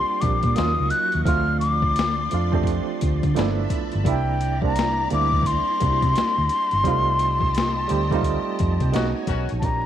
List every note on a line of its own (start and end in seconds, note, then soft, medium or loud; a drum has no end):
0.00 0.21 G3 medium
0.00 0.21 A#3 medium
0.00 0.22 C4 medium
0.00 0.23 D4 medium
0.00 0.57 F4 loud
0.00 0.55 G4 medium
0.00 0.55 D5 medium
0.00 0.22 C6 loud
0.00 0.55 C6 medium
0.21 0.41 A#1 medium
0.21 0.56 G3 medium
0.21 0.55 A#3 medium
0.21 0.56 C4 medium
0.21 0.57 D4 medium
0.21 0.57 G4 medium
0.21 0.56 D6 medium
0.21 kick loud
0.21 closed hi-hat medium
0.43 0.54 A#2 medium
0.43 kick medium
0.43 closed hi-hat soft
0.55 0.75 D#2 loud
0.55 1.16 F#3 medium
0.55 1.26 F#3 medium
0.55 1.16 A#3 medium
0.55 1.17 C#4 medium
0.55 1.17 D#4 medium
0.55 1.18 F4 medium
0.55 1.25 D#5 medium
0.55 1.26 C#6 medium
0.55 0.92 D#6 loud
0.55 snare loud
0.55 closed hi-hat medium
0.80 0.89 C#2 medium
0.90 1.25 F#6 loud
0.90 closed hi-hat medium
1.12 1.24 D#2 medium
1.12 closed hi-hat soft
1.25 2.27 D2 loud
1.25 2.15 F3 loud
1.25 4.02 F3 medium
1.25 2.16 A3 medium
1.25 2.16 C4 medium
1.25 2.16 D4 medium
1.25 2.17 F4 loud
1.25 3.33 D5 medium
1.25 3.33 C6 medium
1.25 1.58 F6 loud
1.25 kick loud
1.25 closed hi-hat medium
1.60 2.61 D6 loud
1.60 closed hi-hat medium
1.82 kick medium
1.96 snare loud
1.96 closed hi-hat medium
2.31 2.78 F2 medium
2.31 2.49 F3 medium
2.31 2.49 A3 medium
2.31 2.50 C4 medium
2.31 2.50 D4 medium
2.31 2.50 F4 medium
2.31 closed hi-hat medium
2.52 3.34 F3 medium
2.52 3.34 A3 medium
2.52 3.35 C4 medium
2.52 3.36 D4 medium
2.52 3.36 G4 loud
2.52 kick medium
2.63 kick medium
2.63 closed hi-hat medium
3.01 3.20 D2 medium
3.01 kick medium
3.01 closed hi-hat medium
3.23 3.34 D3 medium
3.23 kick medium
3.23 closed hi-hat soft
3.35 3.65 G1 medium
3.35 3.95 F3 loud
3.35 3.95 A3 medium
3.35 3.96 B3 medium
3.35 3.96 D4 medium
3.35 3.97 E4 loud
3.35 4.04 E5 medium
3.35 4.04 A5 medium
3.35 4.04 B5 medium
3.35 snare loud
3.35 closed hi-hat medium
3.70 kick loud
3.70 closed hi-hat medium
3.92 4.04 G1 loud
3.92 closed hi-hat soft
4.04 5.06 C2 loud
4.04 4.49 G3 medium
4.04 4.50 A#3 medium
4.04 4.50 C4 medium
4.04 4.51 D4 medium
4.04 6.82 E4 medium
4.04 4.51 E4 loud
4.04 6.82 D5 medium
4.04 6.82 A#5 medium
4.04 kick loud
4.04 closed hi-hat medium
4.09 4.60 G5 loud
4.41 closed hi-hat medium
4.62 5.02 G3 medium
4.62 5.03 A#3 medium
4.62 5.03 C4 medium
4.62 5.04 D4 medium
4.62 5.04 G4 medium
4.62 kick loud
4.66 5.08 A#5 loud
4.76 snare loud
4.76 closed hi-hat medium
5.10 5.57 D2 medium
5.10 5.70 G3 medium
5.10 5.71 A#3 medium
5.10 5.71 C4 medium
5.10 5.71 D4 medium
5.10 5.72 E4 medium
5.10 5.48 D6 loud
5.10 closed hi-hat medium
5.32 kick medium
5.43 8.94 C6 loud
5.43 kick medium
5.43 closed hi-hat medium
5.80 5.99 C2 loud
5.80 6.69 G3 medium
5.80 6.70 A#3 medium
5.80 6.70 C4 medium
5.80 6.71 D4 medium
5.80 5.89 F#4 medium
5.80 kick medium
5.80 closed hi-hat medium
5.90 6.74 G4 medium
6.02 6.13 C3 medium
6.02 kick loud
6.02 closed hi-hat soft
6.16 muted fingered electric bass stroke soft
6.16 snare loud
6.16 closed hi-hat medium
6.38 6.48 D2 medium
6.49 closed hi-hat medium
6.71 6.82 G1 medium
6.71 closed hi-hat soft
6.83 7.85 C2 loud
6.83 7.73 G3 loud
6.83 6.92 G#3 medium
6.83 7.74 C4 loud
6.83 7.75 D#4 loud
6.83 8.92 G4 medium
6.83 8.92 D#5 medium
6.83 8.92 A5 medium
6.83 kick loud
6.83 closed hi-hat medium
6.88 7.75 F4 loud
6.92 7.77 A3 loud
7.19 closed hi-hat medium
7.40 kick loud
7.55 snare loud
7.55 closed hi-hat medium
7.88 8.36 D2 medium
7.88 8.06 G3 medium
7.88 8.07 A3 medium
7.88 8.07 C4 medium
7.88 8.07 D#4 medium
7.88 8.08 G4 loud
7.88 closed hi-hat medium
8.11 8.93 G3 medium
8.11 8.94 A3 medium
8.11 8.94 C4 medium
8.11 8.94 D#4 medium
8.11 8.95 F4 loud
8.11 kick medium
8.11 closed hi-hat soft
8.21 kick medium
8.21 closed hi-hat medium
8.59 8.78 F2 medium
8.59 8.80 A5 medium
8.59 kick loud
8.59 closed hi-hat medium
8.80 8.92 C3 medium
8.80 8.93 G5 medium
8.80 kick medium
8.80 closed hi-hat soft
8.92 9.12 B1 loud
8.92 9.09 D#3 medium
8.92 9.53 G#3 loud
8.92 9.54 B3 medium
8.92 9.09 C#4 medium
8.92 9.54 C#4 medium
8.92 9.63 D#4 medium
8.92 9.54 D#4 medium
8.92 9.09 F#4 medium
8.92 9.55 F#4 loud
8.92 9.63 C#5 medium
8.92 9.59 F#5 medium
8.92 9.63 G#5 medium
8.92 snare loud
8.92 closed hi-hat medium
9.27 9.46 B1 medium
9.27 9.50 D#3 medium
9.27 9.50 C#4 medium
9.27 9.50 F#4 medium
9.27 kick loud
9.27 closed hi-hat medium
9.49 9.62 A#1 medium
9.49 closed hi-hat soft
9.60 9.86 A#1 medium
9.60 9.86 F3 medium
9.60 9.86 A#3 medium
9.60 9.66 A5 medium
9.60 kick loud
9.60 closed hi-hat medium
9.64 9.86 C4 medium
9.64 9.86 D4 medium
9.64 9.86 G4 medium
9.64 9.86 A#5 loud